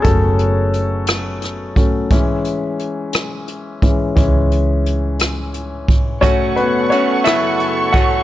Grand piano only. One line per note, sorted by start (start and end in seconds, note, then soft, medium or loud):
0.00 0.05 A3 medium
0.00 2.13 B3 medium
0.00 0.06 C#4 medium
0.00 2.13 G#4 medium
0.00 0.02 A4 medium
0.00 1.37 A4 medium
0.00 2.12 A#4 medium
0.00 2.13 B4 medium
0.00 2.13 C#5 medium
0.04 1.04 F#3 soft
0.04 1.38 A3 medium
0.04 1.04 C#4 medium
1.76 2.07 F#3 soft
1.76 2.08 A3 soft
1.76 2.08 C#4 soft
2.11 3.10 E3 medium
2.11 3.10 G#3 soft
2.11 3.10 C#4 medium
3.82 4.13 E3 soft
3.82 4.13 G#3 soft
3.82 4.14 C#4 soft
4.16 4.62 E3 medium
4.16 4.62 G#3 soft
4.16 4.63 C#4 medium
6.21 7.21 F#3 soft
6.21 7.21 A3 soft
6.21 6.55 C#4 medium
6.21 6.57 C#5 medium
6.56 6.90 B3 medium
6.56 6.92 B4 medium
6.90 7.24 C#4 medium
6.90 7.26 C#5 medium
7.24 7.91 E4 medium
7.24 7.96 E5 medium
7.93 8.23 F#4 medium
7.93 8.23 F#5 medium